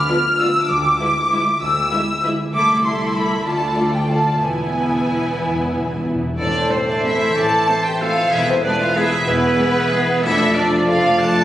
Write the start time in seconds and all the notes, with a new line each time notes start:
Already playing: D3 A3 B3 D4 F6
0.08 F3 B3 F4 B4 D5
0.24 D4
0.39 F3 A3 B3 F4 B4 D5 E6
0.55 D4
0.69 D2 D3 D6
0.84 B3
0.99 G#3 E4 G#4 B4 E5
1.16 E4
1.31 G#3 E4 B4 E5
1.47 E4
1.61 D2 D3 E6
1.76 B3
1.91 G#3 E4 G#4 B4 E5
2.08 E4
2.23 G#3 E4 B4 E5
2.39 E4
2.53 C2 C3 A3 E4 A4 E5 D6
2.68 A3
2.84 A3 E4 A4 E5 C6
3.00 E4
3.15 A3 C4 E4 B5
3.31 E4
3.45 D2 D3 A3 F4 A4 D5 A5
3.61 D4
3.77 A3 F4 A4
3.93 F4 G5
4.09 A3 F4 A4 D5 A5
4.26 F4
4.41 E1 E2 E3 B3 E4 B4 G#5
4.49 E2
4.57 E2 E4
4.64 E2
4.72 E2 B3 E4 B4
4.80 E2
4.88 E2 E4
4.96 E2
5.08 E2 B3 E4
5.19 E2
5.25 E2 E4
5.33 E2
5.40 E2 E3
5.47 E2
5.54 E2 B3
5.61 E2
5.69 E2 B3 E4 B4
5.77 E2
5.84 E2
5.89 E2 E4
6.00 E2
6.06 E2 B3 E4
6.15 E2
6.22 E2 E4
6.29 E2
6.37 A1 A2 E3 D4 A4 C5 D5
6.47 E3
6.55 C4
6.63 E4
6.70 A3 C4 A4 C5
6.80 C5
6.87 D4 D5 E5
6.96 C5
7.04 A3 C4 E4 A4 E5
7.13 E4
7.21 C4
7.29 E3
7.36 A1 A2 A4 D5 A5
7.44 A3
7.52 C4
7.60 E4
7.68 A3 C4 C5
7.77 C5
7.85 G4 E5 G5
8.01 A3 C4 F4 A4 F5
8.09 E4
8.17 C4
8.25 E3
8.32 E1 E2 E3 E4 G#4 B4 E5
8.40 B2
8.47 B3 C4 C5
8.56 E4
8.64 G#3 B3 D4 G#4 B4 D5
8.72 B4
8.80 F4 E5 F5
8.88 B4
8.96 G#3 B3 E4 G#4 E5
9.04 E4
9.12 B3
9.20 B2
9.27 E1 E2 B3 E4 B4
9.35 G#3
9.42 B3
9.50 E4
9.59 G#3 B3 G#4
9.67 B4
9.75 E5
9.83 B4
9.92 G#3 B3 G#4
9.99 E4
10.07 B3
10.15 B2
10.22 F1 F2 F3 A3 D4 E4 A4 D5 E5
10.31 F3
10.39 D4
10.46 A4
10.54 A3 D4 F4 D5
10.64 D5
10.72 A5
10.80 D5
10.88 A3 D4 F4 A4 F5
10.97 D4
11.04 A3
11.13 F3
11.19 F2 A3 D4 A4 A5
11.28 A3
11.36 D4